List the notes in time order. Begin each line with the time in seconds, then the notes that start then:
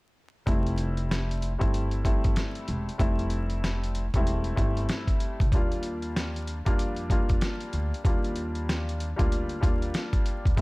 0.46 F1 G3 A3 C4 E4, kick, closed hi-hat
0.67 closed hi-hat
0.78 closed hi-hat
0.97 closed hi-hat
1.11 snare, closed hi-hat
1.31 closed hi-hat
1.42 closed hi-hat
1.58 G1 G3 A3 C4 E4, kick, closed hi-hat
1.74 closed hi-hat
1.91 closed hi-hat
2.04 G3 A3 C4 E4, kick, closed hi-hat
2.24 G1, kick, closed hi-hat
2.36 snare, closed hi-hat
2.55 closed hi-hat
2.68 E1, closed hi-hat
2.89 closed hi-hat
2.98 F1 G3 A3 C4 E4, kick, closed hi-hat
3.19 closed hi-hat
3.30 closed hi-hat
3.50 closed hi-hat
3.64 snare, closed hi-hat
3.84 closed hi-hat
3.95 closed hi-hat
4.14 E1 G3 A3 C4 E4, kick, closed hi-hat
4.27 closed hi-hat
4.44 closed hi-hat
4.56 G1 G3 A3 C4 E4, kick, closed hi-hat
4.77 closed hi-hat
4.89 snare, closed hi-hat
5.07 kick, closed hi-hat
5.20 closed hi-hat
5.40 C2, kick, closed hi-hat
5.52 D#2 G3 A#3 D4 F4, kick, closed hi-hat
5.72 closed hi-hat
5.83 closed hi-hat
6.02 closed hi-hat
6.16 snare, closed hi-hat
6.36 closed hi-hat
6.47 closed hi-hat
6.65 F2 G3 A#3 D4 F4, kick, closed hi-hat
6.79 closed hi-hat
6.96 closed hi-hat
7.10 G3 A#3 D4 F4, kick, closed hi-hat
7.29 F2, kick, closed hi-hat
7.41 snare, closed hi-hat
7.61 closed hi-hat
7.73 D2, closed hi-hat
7.94 closed hi-hat
8.04 D#2 G3 A#3 D4 F4, kick, closed hi-hat
8.24 closed hi-hat
8.36 closed hi-hat
8.55 closed hi-hat
8.69 snare, closed hi-hat
8.89 closed hi-hat
9.00 closed hi-hat
9.16 D2 G3 A#3 D4 F4, kick, closed hi-hat
9.32 closed hi-hat
9.49 closed hi-hat
9.60 D#2 G3 A#3 D4 F4, kick, closed hi-hat
9.82 closed hi-hat
9.94 snare, closed hi-hat
10.13 kick, closed hi-hat
10.26 closed hi-hat
10.45 D#2, kick, closed hi-hat
10.56 F1 G3 A3 C4, kick, closed hi-hat